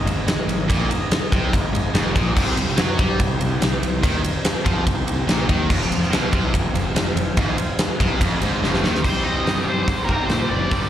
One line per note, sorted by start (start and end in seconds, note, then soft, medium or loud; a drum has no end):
0.00 2.32 G#3 medium
0.00 2.32 D#4 medium
0.00 2.32 G#4 medium
0.00 2.33 D#5 medium
0.05 0.25 G#1 medium
0.05 0.23 G#2 medium
0.05 ride medium
0.27 0.47 G#1 medium
0.27 0.44 G#2 medium
0.27 snare loud
0.27 ride loud
0.48 0.67 G#1 medium
0.48 0.65 G#2 medium
0.48 ride medium
0.69 0.87 A#1 loud
0.69 0.89 A#2 loud
0.69 kick loud
0.69 ride medium
0.88 muted fingered electric bass stroke soft
0.88 muted distorted electric guitar stroke medium
0.88 ride medium
1.11 snare loud
1.11 ride medium
1.32 1.51 C2 medium
1.32 1.52 C3 loud
1.32 kick loud
1.32 ride medium
1.53 1.72 G#1 medium
1.53 1.70 G#2 medium
1.53 kick medium
1.53 ride medium
1.73 1.93 G#1 medium
1.73 1.90 G#2 medium
1.73 ride medium
1.94 2.14 F1 medium
1.94 2.14 F2 loud
1.94 snare loud
1.94 ride medium
2.14 2.35 A#1 medium
2.14 2.34 A#2 loud
2.14 kick loud
2.14 ride medium
2.35 2.56 C2 loud
2.35 2.55 C3 medium
2.35 5.66 C4 medium
2.35 5.67 D#4 medium
2.35 5.67 G4 medium
2.35 5.66 C5 medium
2.35 kick loud
2.35 crash loud
2.56 2.76 C2 medium
2.56 2.73 C3 medium
2.56 ride medium
2.68 snare soft
2.76 2.97 F#2 loud
2.76 2.97 F#3 loud
2.76 snare loud
2.76 ride medium
2.97 3.18 G2 medium
2.97 3.18 G3 loud
2.97 kick loud
2.97 ride medium
3.19 3.39 C2 medium
3.19 3.36 C3 medium
3.19 kick loud
3.19 ride medium
3.39 3.61 C2 medium
3.39 3.56 C3 medium
3.39 ride medium
3.60 3.81 C2 medium
3.60 3.78 C3 medium
3.60 snare loud
3.60 ride loud
3.82 4.02 C2 medium
3.82 3.99 C3 medium
3.82 ride medium
4.02 4.23 D#2 loud
4.02 4.23 D#3 loud
4.02 kick loud
4.02 ride loud
4.23 muted distorted electric guitar stroke medium
4.23 muted fingered electric bass stroke soft
4.23 ride medium
4.45 snare loud
4.45 ride loud
4.64 4.85 F2 medium
4.64 4.85 F3 loud
4.64 kick loud
4.64 ride medium
4.86 5.06 C2 medium
4.86 5.03 C3 medium
4.86 kick loud
4.86 ride loud
5.07 5.27 C2 medium
5.07 5.24 C3 medium
5.07 ride medium
5.27 5.47 A#1 medium
5.27 5.48 A#2 loud
5.27 snare loud
5.27 ride medium
5.49 5.69 D#2 loud
5.49 5.69 D#3 loud
5.49 kick loud
5.49 ride medium
5.68 5.89 F1 loud
5.68 5.88 F2 loud
5.68 5.85 F#3 medium
5.68 5.85 C#4 medium
5.68 5.85 F#4 medium
5.68 5.85 C#5 medium
5.68 kick loud
5.68 crash loud
5.83 9.01 F3 medium
5.83 9.01 C4 medium
5.83 9.01 F4 medium
5.83 9.01 C5 medium
5.90 6.10 F1 medium
5.90 6.07 F2 medium
5.90 ride medium
6.02 snare soft
6.11 6.31 B1 loud
6.11 6.31 B2 loud
6.11 snare loud
6.11 ride medium
6.32 6.52 C2 medium
6.32 6.52 C3 loud
6.32 kick loud
6.32 ride medium
6.53 6.73 F1 medium
6.53 6.70 F2 medium
6.53 kick loud
6.53 ride loud
6.74 6.94 F1 medium
6.74 6.91 F2 medium
6.74 ride medium
6.95 7.15 F1 medium
6.95 7.12 F2 medium
6.95 snare loud
6.95 ride medium
7.15 7.35 F1 medium
7.15 7.33 F2 medium
7.15 ride medium
7.37 7.57 G#1 loud
7.37 7.58 G#2 medium
7.37 kick loud
7.37 ride loud
7.57 muted fingered electric bass stroke soft
7.57 muted distorted electric guitar stroke medium
7.57 ride medium
7.79 snare loud
7.79 ride loud
8.00 8.20 C2 medium
8.00 8.20 C3 loud
8.00 kick loud
8.00 ride medium
8.20 8.40 F1 medium
8.20 8.41 F2 loud
8.20 kick loud
8.20 ride loud
8.41 8.61 G#1 medium
8.41 8.62 G#2 loud
8.41 ride medium
8.62 8.82 F1 medium
8.62 8.83 F2 loud
8.62 snare medium
8.74 snare medium
8.82 9.02 D#2 loud
8.82 9.03 D#3 loud
8.82 snare medium
8.95 snare medium
9.03 9.23 C2 medium
9.03 10.07 C3 medium
9.03 10.08 G3 medium
9.03 10.70 G3 medium
9.03 10.70 C4 medium
9.03 10.06 C4 medium
9.03 10.70 D#4 medium
9.03 10.70 G4 medium
9.03 9.26 C5 loud
9.03 kick loud
9.03 crash medium
9.23 9.43 C2 medium
9.23 9.68 D#5 medium
9.45 9.64 G2 medium
9.45 snare loud
9.45 open hi-hat soft
9.62 9.86 G2 medium
9.62 9.82 C5 medium
9.83 10.04 C5 medium
9.88 10.07 G#2 medium
9.88 kick loud
9.88 open hi-hat soft
10.04 10.28 C4 medium
10.04 10.26 A#4 medium
10.09 10.28 G#2 medium
10.09 10.27 C3 medium
10.09 10.29 G3 medium
10.09 kick medium
10.26 10.48 A#2 medium
10.26 10.70 C3 medium
10.26 10.72 G3 medium
10.26 10.50 C5 medium
10.26 snare loud
10.26 open hi-hat soft
10.31 10.71 C4 medium
10.49 10.70 F#1 medium
10.49 10.89 D5 medium
10.70 10.89 G1 loud
10.70 10.89 G2 medium
10.70 10.89 D3 medium
10.70 10.89 G3 medium
10.70 10.89 A#3 medium
10.70 10.89 D4 medium
10.70 10.89 G4 medium
10.70 kick loud
10.70 open hi-hat soft